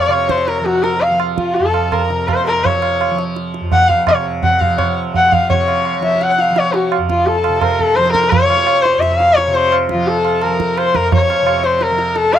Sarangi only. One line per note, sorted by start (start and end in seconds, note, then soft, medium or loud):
0.00 0.32 C#5 loud
0.30 0.50 C5 medium
0.48 0.67 A#4 medium
0.65 0.85 F#4 medium
0.83 1.03 A#4 medium
1.01 1.20 F5 medium
1.37 1.57 F4 medium
1.55 1.94 A4 medium
1.93 2.29 A#4 medium
2.28 2.45 C5 medium
2.46 2.66 A#4 loud
2.64 3.18 C#5 medium
3.73 3.90 F#5 loud
3.88 4.07 F5 loud
4.08 4.24 C#5 medium
4.43 4.62 F#5 loud
4.61 4.77 F5 medium
4.78 4.95 C#5 medium
5.16 5.34 F#5 loud
5.32 5.50 F5 loud
5.50 5.99 C#5 medium
6.04 6.23 E5 medium
6.22 6.42 F#5 loud
6.40 6.60 F5 loud
6.59 6.77 C#5 loud
6.75 6.92 F#4 medium
7.10 7.28 F4 medium
7.27 7.62 A4 medium
7.61 7.82 A#4 medium
7.82 7.97 A4 medium
7.95 8.11 C5 loud
8.12 8.32 A#4 loud
8.30 8.83 C#5 loud
8.82 9.01 C5 loud
9.00 9.20 E5 loud
9.19 9.37 F5 loud
9.36 9.56 C#5 loud
9.54 9.72 C5 loud
9.91 10.09 F4 medium
10.07 10.44 A4 medium
10.42 10.79 A#4 medium
10.78 10.97 C5 loud
10.95 11.12 A#4 loud
11.14 11.66 C#5 loud
11.65 11.84 C5 medium
11.82 12.18 A#4 medium
12.16 12.35 A4 loud
12.34 12.39 F5 loud